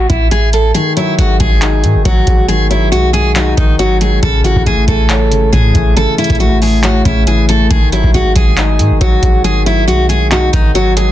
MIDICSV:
0, 0, Header, 1, 5, 480
1, 0, Start_track
1, 0, Tempo, 434783
1, 828, Time_signature, 4, 2, 24, 8
1, 12274, End_track
2, 0, Start_track
2, 0, Title_t, "Steel-string acoustic guitar"
2, 0, Program_c, 0, 25
2, 105, Note_on_c, 0, 64, 71
2, 298, Note_off_c, 0, 64, 0
2, 347, Note_on_c, 0, 68, 81
2, 539, Note_off_c, 0, 68, 0
2, 591, Note_on_c, 0, 69, 79
2, 782, Note_off_c, 0, 69, 0
2, 822, Note_on_c, 0, 68, 97
2, 1016, Note_off_c, 0, 68, 0
2, 1067, Note_on_c, 0, 64, 78
2, 1259, Note_off_c, 0, 64, 0
2, 1309, Note_on_c, 0, 66, 83
2, 1500, Note_off_c, 0, 66, 0
2, 1546, Note_on_c, 0, 68, 82
2, 2224, Note_off_c, 0, 68, 0
2, 2267, Note_on_c, 0, 66, 76
2, 2719, Note_off_c, 0, 66, 0
2, 2742, Note_on_c, 0, 68, 96
2, 2936, Note_off_c, 0, 68, 0
2, 2987, Note_on_c, 0, 64, 78
2, 3179, Note_off_c, 0, 64, 0
2, 3221, Note_on_c, 0, 66, 83
2, 3416, Note_off_c, 0, 66, 0
2, 3458, Note_on_c, 0, 68, 85
2, 3654, Note_off_c, 0, 68, 0
2, 3707, Note_on_c, 0, 66, 77
2, 3899, Note_off_c, 0, 66, 0
2, 3944, Note_on_c, 0, 63, 81
2, 4137, Note_off_c, 0, 63, 0
2, 4186, Note_on_c, 0, 66, 84
2, 4379, Note_off_c, 0, 66, 0
2, 4429, Note_on_c, 0, 68, 83
2, 4620, Note_off_c, 0, 68, 0
2, 4668, Note_on_c, 0, 69, 94
2, 4860, Note_off_c, 0, 69, 0
2, 4904, Note_on_c, 0, 66, 81
2, 5098, Note_off_c, 0, 66, 0
2, 5152, Note_on_c, 0, 68, 78
2, 5342, Note_off_c, 0, 68, 0
2, 5391, Note_on_c, 0, 69, 78
2, 6066, Note_off_c, 0, 69, 0
2, 6100, Note_on_c, 0, 68, 86
2, 6555, Note_off_c, 0, 68, 0
2, 6588, Note_on_c, 0, 69, 96
2, 6780, Note_off_c, 0, 69, 0
2, 6825, Note_on_c, 0, 64, 77
2, 7018, Note_off_c, 0, 64, 0
2, 7064, Note_on_c, 0, 66, 76
2, 7258, Note_off_c, 0, 66, 0
2, 7312, Note_on_c, 0, 68, 73
2, 7502, Note_off_c, 0, 68, 0
2, 7551, Note_on_c, 0, 66, 80
2, 7741, Note_off_c, 0, 66, 0
2, 7786, Note_on_c, 0, 64, 69
2, 7979, Note_off_c, 0, 64, 0
2, 8028, Note_on_c, 0, 68, 78
2, 8220, Note_off_c, 0, 68, 0
2, 8273, Note_on_c, 0, 69, 82
2, 8463, Note_off_c, 0, 69, 0
2, 8506, Note_on_c, 0, 68, 99
2, 8699, Note_off_c, 0, 68, 0
2, 8750, Note_on_c, 0, 64, 82
2, 8941, Note_off_c, 0, 64, 0
2, 8991, Note_on_c, 0, 66, 81
2, 9182, Note_off_c, 0, 66, 0
2, 9227, Note_on_c, 0, 68, 81
2, 9904, Note_off_c, 0, 68, 0
2, 9950, Note_on_c, 0, 66, 78
2, 10400, Note_off_c, 0, 66, 0
2, 10425, Note_on_c, 0, 68, 99
2, 10618, Note_off_c, 0, 68, 0
2, 10668, Note_on_c, 0, 64, 78
2, 10860, Note_off_c, 0, 64, 0
2, 10903, Note_on_c, 0, 66, 81
2, 11097, Note_off_c, 0, 66, 0
2, 11140, Note_on_c, 0, 68, 81
2, 11335, Note_off_c, 0, 68, 0
2, 11390, Note_on_c, 0, 66, 76
2, 11581, Note_off_c, 0, 66, 0
2, 11625, Note_on_c, 0, 63, 86
2, 11818, Note_off_c, 0, 63, 0
2, 11869, Note_on_c, 0, 66, 86
2, 12060, Note_off_c, 0, 66, 0
2, 12108, Note_on_c, 0, 68, 83
2, 12274, Note_off_c, 0, 68, 0
2, 12274, End_track
3, 0, Start_track
3, 0, Title_t, "Grand piano"
3, 0, Program_c, 1, 0
3, 828, Note_on_c, 1, 51, 86
3, 1062, Control_c, 1, 64, 127
3, 1070, Note_on_c, 1, 54, 77
3, 1308, Note_on_c, 1, 56, 75
3, 1787, Note_on_c, 1, 63, 80
3, 2007, Note_off_c, 1, 51, 0
3, 2024, Note_on_c, 1, 51, 77
3, 2251, Note_off_c, 1, 54, 0
3, 2268, Note_on_c, 1, 54, 95
3, 2491, Note_off_c, 1, 56, 0
3, 2508, Note_on_c, 1, 56, 81
3, 2732, Note_off_c, 1, 51, 0
3, 2748, Note_on_c, 1, 51, 83
3, 2970, Note_off_c, 1, 54, 0
3, 2987, Note_off_c, 1, 63, 0
3, 2987, Note_on_c, 1, 54, 77
3, 3213, Note_off_c, 1, 56, 0
3, 3230, Note_on_c, 1, 56, 78
3, 3706, Note_on_c, 1, 63, 88
3, 3936, Note_off_c, 1, 51, 0
3, 3952, Note_on_c, 1, 51, 79
3, 4169, Note_off_c, 1, 54, 0
3, 4186, Note_on_c, 1, 54, 98
3, 4414, Note_off_c, 1, 56, 0
3, 4430, Note_on_c, 1, 56, 82
3, 4665, Note_on_c, 1, 49, 95
3, 4667, Note_off_c, 1, 54, 0
3, 4667, Note_off_c, 1, 63, 0
3, 4669, Note_off_c, 1, 56, 0
3, 4670, Note_off_c, 1, 51, 0
3, 4683, Control_c, 1, 64, 0
3, 4875, Control_c, 1, 64, 127
3, 4907, Note_on_c, 1, 52, 83
3, 5147, Note_on_c, 1, 57, 77
3, 5622, Note_on_c, 1, 73, 91
3, 5844, Note_off_c, 1, 49, 0
3, 5861, Note_on_c, 1, 49, 74
3, 6095, Note_off_c, 1, 52, 0
3, 6111, Note_on_c, 1, 52, 90
3, 6328, Note_off_c, 1, 57, 0
3, 6345, Note_on_c, 1, 57, 73
3, 6567, Note_off_c, 1, 49, 0
3, 6583, Note_on_c, 1, 49, 86
3, 6811, Note_off_c, 1, 52, 0
3, 6825, Note_off_c, 1, 73, 0
3, 6828, Note_on_c, 1, 52, 73
3, 7052, Note_off_c, 1, 57, 0
3, 7068, Note_on_c, 1, 57, 79
3, 7543, Note_on_c, 1, 73, 85
3, 7769, Note_off_c, 1, 49, 0
3, 7785, Note_on_c, 1, 49, 82
3, 8014, Note_off_c, 1, 52, 0
3, 8031, Note_on_c, 1, 52, 87
3, 8252, Note_off_c, 1, 57, 0
3, 8268, Note_on_c, 1, 57, 79
3, 8505, Note_off_c, 1, 73, 0
3, 8507, Note_off_c, 1, 49, 0
3, 8507, Note_on_c, 1, 51, 84
3, 8508, Note_off_c, 1, 57, 0
3, 8509, Note_off_c, 1, 52, 0
3, 8523, Control_c, 1, 64, 0
3, 8718, Control_c, 1, 64, 127
3, 8751, Note_on_c, 1, 54, 76
3, 8989, Note_on_c, 1, 56, 79
3, 9467, Note_on_c, 1, 63, 84
3, 9688, Note_off_c, 1, 51, 0
3, 9704, Note_on_c, 1, 51, 75
3, 9932, Note_off_c, 1, 54, 0
3, 9948, Note_on_c, 1, 54, 95
3, 10172, Note_off_c, 1, 56, 0
3, 10188, Note_on_c, 1, 56, 81
3, 10413, Note_off_c, 1, 51, 0
3, 10429, Note_on_c, 1, 51, 83
3, 10650, Note_off_c, 1, 54, 0
3, 10666, Note_on_c, 1, 54, 78
3, 10668, Note_off_c, 1, 63, 0
3, 10895, Note_off_c, 1, 56, 0
3, 10911, Note_on_c, 1, 56, 76
3, 11386, Note_on_c, 1, 63, 91
3, 11616, Note_off_c, 1, 51, 0
3, 11633, Note_on_c, 1, 51, 74
3, 11851, Note_off_c, 1, 54, 0
3, 11868, Note_on_c, 1, 54, 101
3, 12095, Note_off_c, 1, 56, 0
3, 12112, Note_on_c, 1, 56, 82
3, 12274, Note_off_c, 1, 51, 0
3, 12274, Note_off_c, 1, 54, 0
3, 12274, Note_off_c, 1, 56, 0
3, 12274, Note_off_c, 1, 63, 0
3, 12274, End_track
4, 0, Start_track
4, 0, Title_t, "808-style bass"
4, 0, Program_c, 2, 38
4, 108, Note_on_c, 2, 33, 104
4, 799, Note_off_c, 2, 33, 0
4, 1308, Note_on_c, 2, 32, 101
4, 1539, Note_off_c, 2, 32, 0
4, 1547, Note_on_c, 2, 32, 106
4, 2028, Note_on_c, 2, 44, 98
4, 2044, Note_off_c, 2, 32, 0
4, 2155, Note_on_c, 2, 32, 97
4, 2172, Note_off_c, 2, 44, 0
4, 2262, Note_off_c, 2, 32, 0
4, 2267, Note_on_c, 2, 32, 101
4, 2498, Note_off_c, 2, 32, 0
4, 2508, Note_on_c, 2, 32, 104
4, 3227, Note_on_c, 2, 35, 98
4, 3243, Note_off_c, 2, 32, 0
4, 3911, Note_off_c, 2, 35, 0
4, 3948, Note_on_c, 2, 32, 108
4, 4639, Note_off_c, 2, 32, 0
4, 4667, Note_on_c, 2, 33, 113
4, 5020, Note_off_c, 2, 33, 0
4, 5035, Note_on_c, 2, 33, 102
4, 5143, Note_off_c, 2, 33, 0
4, 5148, Note_on_c, 2, 33, 105
4, 5378, Note_off_c, 2, 33, 0
4, 5387, Note_on_c, 2, 33, 109
4, 5867, Note_on_c, 2, 32, 103
4, 5884, Note_off_c, 2, 33, 0
4, 5995, Note_on_c, 2, 33, 101
4, 6012, Note_off_c, 2, 32, 0
4, 6102, Note_off_c, 2, 33, 0
4, 6107, Note_on_c, 2, 45, 105
4, 6338, Note_off_c, 2, 45, 0
4, 6347, Note_on_c, 2, 33, 102
4, 6700, Note_off_c, 2, 33, 0
4, 6955, Note_on_c, 2, 33, 106
4, 7755, Note_off_c, 2, 33, 0
4, 7787, Note_on_c, 2, 33, 109
4, 8479, Note_off_c, 2, 33, 0
4, 8507, Note_on_c, 2, 32, 115
4, 8860, Note_off_c, 2, 32, 0
4, 8875, Note_on_c, 2, 32, 100
4, 8981, Note_off_c, 2, 32, 0
4, 8988, Note_on_c, 2, 32, 101
4, 9219, Note_off_c, 2, 32, 0
4, 9227, Note_on_c, 2, 32, 105
4, 9707, Note_on_c, 2, 44, 100
4, 9724, Note_off_c, 2, 32, 0
4, 9835, Note_on_c, 2, 32, 96
4, 9852, Note_off_c, 2, 44, 0
4, 9942, Note_off_c, 2, 32, 0
4, 9948, Note_on_c, 2, 32, 100
4, 10179, Note_off_c, 2, 32, 0
4, 10188, Note_on_c, 2, 32, 106
4, 10908, Note_on_c, 2, 35, 100
4, 10924, Note_off_c, 2, 32, 0
4, 11592, Note_off_c, 2, 35, 0
4, 11629, Note_on_c, 2, 32, 101
4, 12274, Note_off_c, 2, 32, 0
4, 12274, End_track
5, 0, Start_track
5, 0, Title_t, "Drums"
5, 107, Note_on_c, 9, 42, 75
5, 108, Note_on_c, 9, 36, 94
5, 217, Note_off_c, 9, 42, 0
5, 218, Note_off_c, 9, 36, 0
5, 346, Note_on_c, 9, 42, 83
5, 456, Note_off_c, 9, 42, 0
5, 586, Note_on_c, 9, 42, 84
5, 697, Note_off_c, 9, 42, 0
5, 827, Note_on_c, 9, 42, 76
5, 937, Note_off_c, 9, 42, 0
5, 1068, Note_on_c, 9, 42, 65
5, 1179, Note_off_c, 9, 42, 0
5, 1309, Note_on_c, 9, 42, 64
5, 1419, Note_off_c, 9, 42, 0
5, 1545, Note_on_c, 9, 42, 69
5, 1547, Note_on_c, 9, 36, 84
5, 1656, Note_off_c, 9, 42, 0
5, 1657, Note_off_c, 9, 36, 0
5, 1785, Note_on_c, 9, 42, 86
5, 1788, Note_on_c, 9, 39, 124
5, 1895, Note_off_c, 9, 42, 0
5, 1898, Note_off_c, 9, 39, 0
5, 2027, Note_on_c, 9, 42, 74
5, 2138, Note_off_c, 9, 42, 0
5, 2266, Note_on_c, 9, 42, 85
5, 2267, Note_on_c, 9, 36, 99
5, 2377, Note_off_c, 9, 42, 0
5, 2378, Note_off_c, 9, 36, 0
5, 2506, Note_on_c, 9, 42, 86
5, 2507, Note_on_c, 9, 36, 91
5, 2617, Note_off_c, 9, 42, 0
5, 2618, Note_off_c, 9, 36, 0
5, 2747, Note_on_c, 9, 42, 74
5, 2858, Note_off_c, 9, 42, 0
5, 2989, Note_on_c, 9, 42, 64
5, 3099, Note_off_c, 9, 42, 0
5, 3229, Note_on_c, 9, 42, 65
5, 3339, Note_off_c, 9, 42, 0
5, 3466, Note_on_c, 9, 42, 67
5, 3576, Note_off_c, 9, 42, 0
5, 3705, Note_on_c, 9, 42, 84
5, 3708, Note_on_c, 9, 39, 122
5, 3815, Note_off_c, 9, 42, 0
5, 3818, Note_off_c, 9, 39, 0
5, 3947, Note_on_c, 9, 42, 77
5, 3948, Note_on_c, 9, 36, 92
5, 4058, Note_off_c, 9, 36, 0
5, 4058, Note_off_c, 9, 42, 0
5, 4186, Note_on_c, 9, 42, 83
5, 4297, Note_off_c, 9, 42, 0
5, 4427, Note_on_c, 9, 42, 86
5, 4537, Note_off_c, 9, 42, 0
5, 4667, Note_on_c, 9, 36, 120
5, 4667, Note_on_c, 9, 42, 75
5, 4778, Note_off_c, 9, 36, 0
5, 4778, Note_off_c, 9, 42, 0
5, 4909, Note_on_c, 9, 42, 64
5, 5019, Note_off_c, 9, 42, 0
5, 5035, Note_on_c, 9, 36, 102
5, 5146, Note_off_c, 9, 36, 0
5, 5149, Note_on_c, 9, 42, 65
5, 5260, Note_off_c, 9, 42, 0
5, 5385, Note_on_c, 9, 42, 67
5, 5387, Note_on_c, 9, 36, 87
5, 5496, Note_off_c, 9, 42, 0
5, 5497, Note_off_c, 9, 36, 0
5, 5625, Note_on_c, 9, 42, 86
5, 5628, Note_on_c, 9, 39, 124
5, 5735, Note_off_c, 9, 42, 0
5, 5738, Note_off_c, 9, 39, 0
5, 5868, Note_on_c, 9, 42, 74
5, 5979, Note_off_c, 9, 42, 0
5, 6107, Note_on_c, 9, 36, 98
5, 6107, Note_on_c, 9, 42, 85
5, 6217, Note_off_c, 9, 42, 0
5, 6218, Note_off_c, 9, 36, 0
5, 6346, Note_on_c, 9, 42, 88
5, 6347, Note_on_c, 9, 36, 95
5, 6456, Note_off_c, 9, 42, 0
5, 6458, Note_off_c, 9, 36, 0
5, 6587, Note_on_c, 9, 42, 76
5, 6697, Note_off_c, 9, 42, 0
5, 6827, Note_on_c, 9, 42, 64
5, 6891, Note_off_c, 9, 42, 0
5, 6891, Note_on_c, 9, 42, 57
5, 6954, Note_off_c, 9, 42, 0
5, 6954, Note_on_c, 9, 42, 48
5, 6955, Note_on_c, 9, 36, 101
5, 7011, Note_off_c, 9, 42, 0
5, 7011, Note_on_c, 9, 42, 39
5, 7066, Note_off_c, 9, 36, 0
5, 7070, Note_off_c, 9, 42, 0
5, 7070, Note_on_c, 9, 42, 61
5, 7180, Note_off_c, 9, 42, 0
5, 7306, Note_on_c, 9, 46, 50
5, 7416, Note_off_c, 9, 46, 0
5, 7545, Note_on_c, 9, 42, 84
5, 7548, Note_on_c, 9, 39, 123
5, 7655, Note_off_c, 9, 42, 0
5, 7658, Note_off_c, 9, 39, 0
5, 7787, Note_on_c, 9, 42, 75
5, 7788, Note_on_c, 9, 36, 92
5, 7897, Note_off_c, 9, 42, 0
5, 7898, Note_off_c, 9, 36, 0
5, 8026, Note_on_c, 9, 42, 82
5, 8136, Note_off_c, 9, 42, 0
5, 8266, Note_on_c, 9, 42, 84
5, 8377, Note_off_c, 9, 42, 0
5, 8507, Note_on_c, 9, 42, 76
5, 8508, Note_on_c, 9, 36, 117
5, 8617, Note_off_c, 9, 42, 0
5, 8618, Note_off_c, 9, 36, 0
5, 8748, Note_on_c, 9, 42, 64
5, 8858, Note_off_c, 9, 42, 0
5, 8876, Note_on_c, 9, 36, 100
5, 8986, Note_off_c, 9, 36, 0
5, 8990, Note_on_c, 9, 42, 65
5, 9100, Note_off_c, 9, 42, 0
5, 9224, Note_on_c, 9, 42, 70
5, 9227, Note_on_c, 9, 36, 85
5, 9335, Note_off_c, 9, 42, 0
5, 9337, Note_off_c, 9, 36, 0
5, 9464, Note_on_c, 9, 42, 83
5, 9468, Note_on_c, 9, 39, 122
5, 9575, Note_off_c, 9, 42, 0
5, 9578, Note_off_c, 9, 39, 0
5, 9707, Note_on_c, 9, 42, 73
5, 9818, Note_off_c, 9, 42, 0
5, 9946, Note_on_c, 9, 42, 84
5, 9948, Note_on_c, 9, 36, 100
5, 10057, Note_off_c, 9, 42, 0
5, 10058, Note_off_c, 9, 36, 0
5, 10186, Note_on_c, 9, 42, 86
5, 10188, Note_on_c, 9, 36, 94
5, 10297, Note_off_c, 9, 42, 0
5, 10299, Note_off_c, 9, 36, 0
5, 10427, Note_on_c, 9, 42, 77
5, 10538, Note_off_c, 9, 42, 0
5, 10669, Note_on_c, 9, 42, 62
5, 10780, Note_off_c, 9, 42, 0
5, 10910, Note_on_c, 9, 42, 64
5, 11021, Note_off_c, 9, 42, 0
5, 11147, Note_on_c, 9, 42, 69
5, 11258, Note_off_c, 9, 42, 0
5, 11386, Note_on_c, 9, 42, 83
5, 11390, Note_on_c, 9, 39, 125
5, 11497, Note_off_c, 9, 42, 0
5, 11500, Note_off_c, 9, 39, 0
5, 11629, Note_on_c, 9, 36, 94
5, 11629, Note_on_c, 9, 42, 77
5, 11740, Note_off_c, 9, 36, 0
5, 11740, Note_off_c, 9, 42, 0
5, 11869, Note_on_c, 9, 42, 82
5, 11979, Note_off_c, 9, 42, 0
5, 12108, Note_on_c, 9, 42, 86
5, 12219, Note_off_c, 9, 42, 0
5, 12274, End_track
0, 0, End_of_file